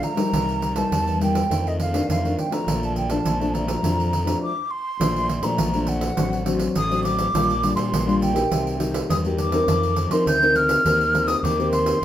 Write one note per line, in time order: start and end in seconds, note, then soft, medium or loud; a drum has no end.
0.00 0.30 F2 medium
0.00 0.14 F3 medium
0.00 0.14 A3 medium
0.00 0.14 D4 medium
0.00 0.79 A#5 loud
0.00 pandeiro medium
0.16 0.71 G3 medium
0.16 0.71 A#3 medium
0.16 0.71 D#4 medium
0.16 pandeiro medium
0.33 0.83 C2 medium
0.33 0.89 C3 soft
0.33 pandeiro medium
0.49 pandeiro soft
0.62 pandeiro medium
0.76 1.16 G3 medium
0.76 1.16 A#3 medium
0.76 1.16 D#4 medium
0.76 1.21 A5 loud
0.76 pandeiro medium
0.91 1.41 E2 medium
0.91 1.47 G2 medium
0.91 pandeiro medium
1.07 pandeiro soft
1.21 1.38 G3 soft
1.21 1.38 A#3 medium
1.21 1.38 D#4 medium
1.21 1.69 G5 medium
1.21 pandeiro medium
1.35 pandeiro medium
1.49 2.05 F2 medium
1.49 2.00 F2 medium
1.49 1.89 D#3 medium
1.49 1.89 A3 medium
1.49 1.89 D4 medium
1.49 pandeiro medium
1.67 1.80 D#5 medium
1.67 pandeiro soft
1.80 2.07 F5 medium
1.80 pandeiro medium
1.92 2.18 D#3 medium
1.92 2.18 A3 medium
1.92 2.18 D4 medium
1.92 pandeiro medium
2.09 2.33 F2 medium
2.09 2.64 C3 medium
2.09 2.36 F5 medium
2.09 pandeiro medium
2.24 2.48 D#3 medium
2.24 2.48 A3 medium
2.24 2.49 D4 medium
2.24 pandeiro soft
2.39 2.55 G5 medium
2.39 pandeiro medium
2.50 3.05 F3 medium
2.50 3.06 A3 medium
2.50 3.06 D4 medium
2.50 2.86 A#5 medium
2.50 pandeiro medium
2.66 3.17 A#1 medium
2.66 3.22 A#2 soft
2.66 pandeiro medium
2.83 2.96 A5 medium
2.83 pandeiro soft
2.96 3.12 G5 medium
2.96 pandeiro soft
3.10 3.35 F3 medium
3.10 3.35 A3 medium
3.10 3.35 D4 medium
3.10 3.55 A5 medium
3.10 pandeiro medium
3.25 3.75 A#1 medium
3.25 3.81 F2 soft
3.25 pandeiro medium
3.40 3.65 F3 medium
3.40 3.65 A3 medium
3.40 3.65 D4 medium
3.40 pandeiro soft
3.53 4.42 A#5 medium
3.53 pandeiro medium
3.67 3.78 F3 medium
3.67 3.78 A3 medium
3.67 3.79 D4 medium
3.67 pandeiro medium
3.82 4.33 F2 medium
3.82 4.39 A#2 medium
3.82 4.11 F3 medium
3.82 4.11 A3 medium
3.82 4.11 D4 medium
3.82 pandeiro medium
4.00 pandeiro soft
4.13 pandeiro medium
4.24 4.51 F3 medium
4.24 4.51 A3 medium
4.24 4.51 D4 medium
4.24 pandeiro medium
4.43 4.72 D6 medium
4.71 5.46 C6 loud
5.00 5.37 A#1 medium
5.00 5.56 A#2 soft
5.00 5.27 F3 medium
5.00 5.28 A3 soft
5.00 5.28 D4 medium
5.00 pandeiro medium
5.16 pandeiro soft
5.29 pandeiro medium
5.42 5.55 A#2 medium
5.42 5.68 F3 medium
5.42 5.68 A3 medium
5.42 5.68 D4 medium
5.42 5.90 A#5 medium
5.42 pandeiro medium
5.58 6.08 A#1 loud
5.58 6.14 F2 medium
5.58 pandeiro medium
5.74 6.13 F3 medium
5.74 6.13 A3 medium
5.74 6.13 D4 medium
5.74 pandeiro soft
5.87 6.48 F#5 loud
5.87 pandeiro medium
6.01 pandeiro medium
6.17 6.67 A1 medium
6.17 6.73 A2 medium
6.17 6.42 F#3 medium
6.17 6.42 C4 medium
6.17 6.42 D4 medium
6.17 pandeiro medium
6.33 pandeiro soft
6.45 6.73 F#3 medium
6.45 6.74 C4 medium
6.45 6.74 D4 medium
6.45 pandeiro medium
6.60 pandeiro medium
6.75 7.25 A1 medium
6.75 7.31 A2 medium
6.75 7.03 D#6 loud
6.75 pandeiro medium
6.90 7.29 F#3 medium
6.90 7.30 C4 medium
6.90 7.30 D4 medium
6.90 pandeiro soft
7.04 7.74 D6 loud
7.04 pandeiro medium
7.19 pandeiro medium
7.34 7.71 A#1 medium
7.34 7.90 A#2 medium
7.34 7.52 G3 medium
7.34 7.52 D4 medium
7.34 7.52 F4 medium
7.34 pandeiro medium
7.50 pandeiro soft
7.63 8.02 G3 soft
7.63 8.02 D4 medium
7.63 8.03 F4 medium
7.63 pandeiro medium
7.76 7.90 A#2 medium
7.76 8.18 C6 medium
7.76 pandeiro medium
7.92 8.42 A#1 loud
7.92 8.48 A#2 soft
7.92 pandeiro medium
8.06 8.31 G3 medium
8.06 8.32 D4 medium
8.06 8.32 F4 medium
8.06 pandeiro soft
8.22 8.79 G5 medium
8.22 pandeiro medium
8.33 8.74 A#3 medium
8.33 8.75 D#4 medium
8.33 8.75 G4 medium
8.33 pandeiro medium
8.51 9.01 C2 medium
8.51 9.06 C3 medium
8.51 pandeiro medium
8.67 pandeiro soft
8.79 9.19 A#3 medium
8.79 9.19 D#4 medium
8.79 9.19 G4 medium
8.79 pandeiro medium
8.94 pandeiro medium
9.09 9.59 E2 medium
9.09 9.65 G2 medium
9.09 9.17 D#6 medium
9.09 pandeiro medium
9.25 9.50 A#3 medium
9.25 9.50 D#4 medium
9.25 9.50 G4 medium
9.25 pandeiro soft
9.38 10.13 D6 medium
9.38 pandeiro medium
9.52 9.92 C4 medium
9.52 9.93 D#4 medium
9.52 9.93 A#4 medium
9.52 pandeiro medium
9.68 10.05 F2 loud
9.68 10.24 F3 medium
9.68 pandeiro medium
9.83 pandeiro soft
9.96 pandeiro medium
10.10 10.23 F3 medium
10.10 10.36 C4 medium
10.10 10.36 D#4 medium
10.10 10.37 A#4 medium
10.10 10.26 C6 medium
10.10 pandeiro medium
10.26 10.76 D2 loud
10.26 10.82 C3 medium
10.26 10.57 G6 loud
10.26 pandeiro medium
10.42 10.81 C4 medium
10.42 10.81 D#4 medium
10.42 10.81 A#4 medium
10.42 pandeiro soft
10.55 11.29 F6 loud
10.55 pandeiro medium
10.69 pandeiro medium
10.85 11.34 D#2 medium
10.85 11.40 D#3 medium
10.85 11.02 C4 medium
10.85 11.02 G4 medium
10.85 11.03 A#4 medium
10.85 pandeiro medium
11.01 pandeiro soft
11.13 11.53 C4 medium
11.13 11.53 G4 medium
11.13 11.53 A#4 medium
11.13 pandeiro medium
11.27 11.45 D#6 loud
11.27 pandeiro medium
11.43 11.93 D#2 medium
11.43 11.99 D#3 medium
11.43 11.71 D6 medium
11.43 pandeiro medium
11.59 11.97 C4 medium
11.59 11.98 G4 medium
11.59 11.98 A#4 medium
11.59 pandeiro soft
11.72 12.05 C6 loud
11.72 pandeiro medium
11.86 pandeiro medium